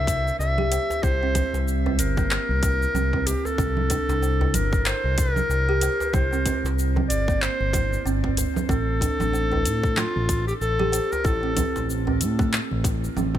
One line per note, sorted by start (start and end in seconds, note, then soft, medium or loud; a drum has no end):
0.00 0.31 C2 loud
0.00 0.39 E5 loud
0.07 kick loud
0.07 closed hi-hat medium
0.07 cabasa medium
0.28 cabasa soft
0.39 0.78 C2 medium
0.39 1.05 E5 loud
0.39 djembe slap soft
0.39 cabasa soft
0.58 0.70 G4 medium
0.58 low conga medium
0.72 0.89 C5 loud
0.72 closed hi-hat loud
0.72 cabasa medium
0.90 djembe slap medium
0.90 djembe tone medium
0.90 cabasa soft
1.03 1.42 C2 loud
1.03 1.21 E4 loud
1.03 1.73 C5 loud
1.03 kick loud
1.03 cabasa soft
1.23 1.34 C4 medium
1.35 1.84 C4 medium
1.35 kick medium
1.35 closed hi-hat medium
1.35 low conga medium
1.35 djembe bass medium
1.35 cabasa medium
1.54 2.01 C2 medium
1.54 djembe slap medium
1.54 cabasa soft
1.68 cabasa soft
1.86 2.16 C4 medium
1.86 djembe bass loud
1.99 2.38 G1 medium
1.99 3.28 A#4 loud
1.99 closed hi-hat medium
1.99 djembe tone soft
1.99 cabasa medium
2.17 2.26 A#3 medium
2.17 kick loud
2.17 low conga medium
2.17 cabasa soft
2.31 clap medium
2.31 cabasa soft
2.49 2.87 C2 loud
2.49 djembe tone soft
2.63 2.81 E4 medium
2.63 kick loud
2.63 closed hi-hat medium
2.63 djembe slap medium
2.63 cabasa medium
2.82 djembe tone soft
2.82 cabasa soft
2.94 3.34 C2 medium
2.94 3.12 C4 medium
2.94 low conga medium
2.94 cabasa soft
3.13 3.57 C4 medium
3.13 kick medium
3.13 djembe tone loud
3.27 3.47 G4 medium
3.27 closed hi-hat medium
3.27 djembe bass medium
3.27 cabasa medium
3.45 4.56 A4 loud
3.45 djembe tone medium
3.45 cabasa soft
3.58 3.98 C2 loud
3.58 3.77 C4 loud
3.58 kick loud
3.58 cabasa medium
3.77 low conga medium
3.90 4.08 D4 medium
3.90 kick medium
3.90 closed hi-hat medium
3.90 djembe bass loud
3.90 cabasa medium
4.09 4.55 C2 medium
4.09 4.22 D4 medium
4.09 djembe slap medium
4.09 cabasa soft
4.23 4.39 C5 medium
4.23 cabasa soft
4.41 4.54 E4 medium
4.41 djembe bass loud
4.54 4.93 G1 medium
4.54 4.88 A#4 medium
4.54 closed hi-hat medium
4.54 djembe tone soft
4.54 low conga medium
4.54 cabasa medium
4.73 kick loud
4.73 cabasa soft
4.86 5.04 A#4 loud
4.86 5.20 C5 loud
4.86 clap medium
4.86 cabasa soft
5.04 5.42 C2 loud
5.18 6.15 A#4 loud
5.18 kick loud
5.18 closed hi-hat medium
5.18 cabasa medium
5.36 low conga medium
5.36 cabasa soft
5.49 5.89 C2 medium
5.49 djembe slap soft
5.49 cabasa soft
5.69 5.81 G4 medium
5.81 6.00 C5 loud
5.81 closed hi-hat medium
5.81 cabasa medium
6.00 djembe slap soft
6.00 djembe tone medium
6.00 cabasa soft
6.13 6.53 C2 loud
6.13 6.31 E4 loud
6.13 6.78 C5 medium
6.13 kick loud
6.13 low conga medium
6.13 cabasa soft
6.33 6.45 C4 medium
6.33 cabasa soft
6.46 6.95 C4 medium
6.46 kick medium
6.46 closed hi-hat medium
6.46 djembe bass loud
6.46 cabasa medium
6.64 7.11 C2 medium
6.64 djembe slap medium
6.64 cabasa soft
6.79 cabasa soft
6.96 7.27 C4 medium
6.96 djembe bass medium
6.96 low conga medium
7.09 7.49 G1 medium
7.09 7.43 D5 loud
7.09 closed hi-hat medium
7.09 djembe tone soft
7.09 cabasa medium
7.28 7.36 A#3 medium
7.28 kick loud
7.28 cabasa soft
7.42 8.06 C5 loud
7.42 clap medium
7.42 cabasa soft
7.61 7.98 G1 loud
7.61 djembe tone soft
7.73 7.91 E4 medium
7.73 kick loud
7.73 closed hi-hat medium
7.73 djembe slap medium
7.73 low conga medium
7.73 cabasa medium
7.93 djembe tone soft
7.93 cabasa soft
8.05 8.45 G1 medium
8.05 8.23 C4 medium
8.05 cabasa soft
8.24 8.68 C4 medium
8.24 kick medium
8.24 djembe tone medium
8.37 closed hi-hat medium
8.37 djembe bass medium
8.37 cabasa medium
8.56 djembe tone medium
8.56 low conga medium
8.56 cabasa soft
8.69 9.08 A1 loud
8.69 8.87 C4 loud
8.69 10.00 A4 loud
8.69 kick loud
8.69 cabasa soft
9.01 9.19 D4 medium
9.01 kick medium
9.01 closed hi-hat medium
9.01 djembe bass loud
9.01 cabasa medium
9.20 9.67 A1 medium
9.20 9.33 D4 medium
9.20 djembe slap medium
9.20 low conga medium
9.20 cabasa soft
9.33 9.50 C5 medium
9.33 cabasa soft
9.52 9.64 E4 medium
9.52 djembe bass loud
9.65 10.04 A2 medium
9.65 closed hi-hat medium
9.65 djembe tone soft
9.65 cabasa medium
9.84 kick loud
9.84 cabasa soft
9.97 10.47 F4 loud
9.97 10.15 A4 loud
9.97 clap medium
9.97 low conga medium
9.97 cabasa soft
10.16 10.53 A1 loud
10.29 kick loud
10.29 closed hi-hat medium
10.29 cabasa medium
10.48 10.54 G4 medium
10.48 cabasa soft
10.61 11.00 A1 medium
10.61 11.14 A4 loud
10.61 djembe slap soft
10.61 cabasa soft
10.79 10.92 G4 medium
10.79 low conga medium
10.92 11.10 C5 loud
10.92 closed hi-hat medium
10.92 cabasa medium
11.12 11.28 A#4 loud
11.12 djembe slap soft
11.12 djembe tone medium
11.12 cabasa soft
11.24 11.64 A1 loud
11.24 11.41 E4 loud
11.24 11.90 A4 loud
11.24 kick loud
11.24 cabasa soft
11.43 11.55 C4 medium
11.57 12.05 C4 medium
11.57 kick medium
11.57 closed hi-hat medium
11.57 low conga medium
11.57 djembe bass medium
11.57 cabasa medium
11.76 12.23 A1 medium
11.76 djembe slap medium
11.76 cabasa soft
11.90 cabasa soft
12.07 12.37 C4 medium
12.07 djembe bass medium
12.21 12.60 A2 medium
12.21 closed hi-hat medium
12.21 djembe tone soft
12.21 cabasa medium
12.39 12.47 A3 medium
12.39 kick loud
12.39 low conga medium
12.39 cabasa soft
12.53 clap medium
12.53 cabasa soft
12.71 13.08 A1 loud
12.71 djembe tone soft
12.84 13.02 E4 medium
12.84 kick loud
12.84 closed hi-hat loud
12.84 djembe slap medium
12.84 cabasa medium
13.04 djembe tone soft
13.04 cabasa soft
13.16 13.38 A1 medium
13.16 13.34 C4 medium
13.16 low conga medium
13.16 cabasa soft
13.35 13.38 C4 medium
13.35 kick medium
13.35 djembe tone medium